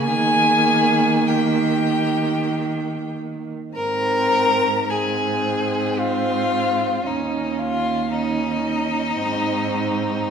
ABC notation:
X:1
M:3/4
L:1/8
Q:1/4=52
K:Ab
V:1 name="Violin"
a2 g3 z | b2 a2 f2 | e f e4 |]
V:2 name="Violin"
A2 G3 z | B2 A2 F2 | E F E4 |]
V:3 name="Viola"
B,6 | C2 C4 | D2 D2 C2 |]
V:4 name="Cello" clef=bass
E,6 | A,,6 | E,,4 A,,2 |]